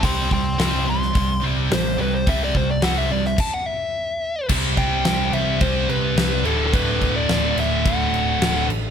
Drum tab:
CC |----------------|--------x-------|x-x-x-x-x-x-x-x-|x-x-x-x-x-x-x-x-|
HH |o---o---o---o---|o---o-----------|----------------|----------------|
SD |----o--o----o---|----o--o--------|----o-------o---|----o-------o---|
BD |o-o-----o-------|o-o-----o-------|o-o-----o-------|o-o-----o-------|